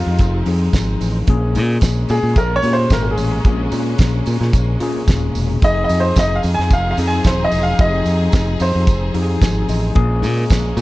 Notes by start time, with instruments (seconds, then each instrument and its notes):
Already playing: tine electric piano F3 C4 D#4 G4 G#4, string section F3 G#3 C4 D#4, grand piano F4
0.06 fingered electric bass F2
0.19 fingered electric bass F1, kick, closed hi-hat, tambourine
0.46 fingered electric bass F2, tine electric piano F3 C4 D#4 G#4, open hi-hat
0.73 fingered electric bass G#1, kick, snare, closed hi-hat, tambourine
1.01 fingered electric bass A1, open hi-hat, tambourine
1.27 fingered electric bass A#1, tine electric piano A#2 A#3 C#4 G#4, string section G#3 A#3 C#4, kick, closed hi-hat
1.55 fingered electric bass A#2, open hi-hat, tambourine
1.81 fingered electric bass A#1, kick, snare, closed hi-hat, tambourine
2.09 fingered electric bass A#2, grand piano G#4, open hi-hat, tambourine
2.23 fingered electric bass A#2
2.36 fingered electric bass A#1, grand piano A#4, kick, closed hi-hat, tambourine
2.56 grand piano C#5
2.62 tine electric piano A#2 A#3 C#4 G4, fingered electric bass A#2, open hi-hat, tambourine
2.73 grand piano C5
2.90 fingered electric bass G#1, grand piano A#4, kick, snare, closed hi-hat, tambourine
3.03 grand piano A#4
3.11 grand piano G#4
3.17 fingered electric bass A1, open hi-hat, tambourine
3.44 fingered electric bass A#1, tine electric piano A#2 A#3 C4 G#4, kick, closed hi-hat, tambourine
3.52 tine electric piano C#4
3.72 fingered electric bass A#2, open hi-hat, tambourine
3.98 fingered electric bass A#1, kick, snare, closed hi-hat, tambourine
4.26 fingered electric bass A#2, open hi-hat, tambourine
4.41 fingered electric bass A#2, snare
4.53 fingered electric bass A#1, kick, closed hi-hat, tambourine
4.80 fingered electric bass A#2, tine electric piano A#2 A#3 C#4 G#4, open hi-hat, tambourine
5.08 fingered electric bass D#1, kick, snare, closed hi-hat, tambourine
5.35 fingered electric bass E1, open hi-hat, tambourine
5.62 fingered electric bass F1, string section F3 C4 D#4 G#4, tine electric piano F3 C4 D#4 G#4, grand piano D#5, kick, closed hi-hat, tambourine
5.84 grand piano D#5
5.89 fingered electric bass F2, open hi-hat, tambourine
6.00 grand piano C5
6.16 fingered electric bass F1, grand piano D#5, kick, snare, closed hi-hat, tambourine
6.36 grand piano F5
6.43 fingered electric bass F2, open hi-hat, tambourine
6.54 grand piano G#5
6.59 fingered electric bass F2, snare
6.70 fingered electric bass F1, grand piano F5, kick, closed hi-hat, tambourine
6.91 grand piano F5
6.97 fingered electric bass F2, tine electric piano F3 C4 D#4 G#4, open hi-hat, tambourine
7.07 grand piano G#5
7.24 fingered electric bass D#1, grand piano C5, kick, snare, closed hi-hat, tambourine
7.44 grand piano D#5
7.52 fingered electric bass E1, open hi-hat, tambourine
7.63 grand piano F5
7.79 fingered electric bass F1, tine electric piano F3 C4 D#4 G4, grand piano D#5, kick, closed hi-hat
7.87 tine electric piano G#4
8.06 fingered electric bass F2, open hi-hat, tambourine
8.32 fingered electric bass F1, kick, snare, closed hi-hat, tambourine
8.60 fingered electric bass F2, grand piano C5, open hi-hat, tambourine
8.75 fingered electric bass F2
8.87 fingered electric bass F1, kick, closed hi-hat, tambourine
9.14 fingered electric bass F2, tine electric piano F3 C4 D#4 G4, open hi-hat
9.22 tine electric piano G#4
9.42 fingered electric bass G#1, tine electric piano G#5, kick, snare, closed hi-hat, tambourine
9.69 fingered electric bass A1, tine electric piano D#5, open hi-hat, tambourine
9.95 fingered electric bass A#1, tine electric piano A#2 A#3 C#4 G#4, string section G#3 A#3 C#4, kick, closed hi-hat
10.22 fingered electric bass A#2, open hi-hat, tambourine
10.50 fingered electric bass A#1, kick, snare, closed hi-hat, tambourine
10.77 fingered electric bass A#2, open hi-hat, tambourine